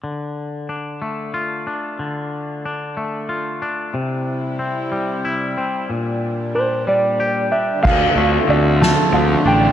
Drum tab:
CC |------|------|------|------|
RD |------|------|------|------|
SD |------|------|------|------|
BD |------|------|------|------|

CC |x-----|
RD |-xxxxx|
SD |---o--|
BD |o-----|